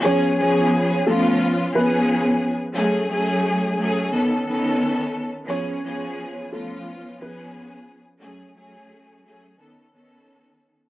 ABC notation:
X:1
M:4/4
L:1/16
Q:"Swing 16ths" 1/4=88
K:C#phr
V:1 name="Upright piano"
[Cc]6 [A,A]2 z2 [B,B] z4 z | z16 | [Cc]6 [A,A]2 z2 [B,B] z4 z | z16 |]
V:2 name="String section"
[^E,B,CG]2 [E,B,CG]4 [E,B,C^E]4 [E,B,CG]4 z2 | [F,A,CG]2 [F,A,CG]4 [F,A,CG]2 [^D,B,CA]2 [D,B,CA]4 z2 | [^E,B,CG]2 [E,B,CG]4 [E,B,C^E]4 [E,B,CG]4 z2 | [F,A,CG]2 [F,A,CG]4 [F,A,CG]2 [^D,B,CA]2 [D,B,CA]4 z2 |]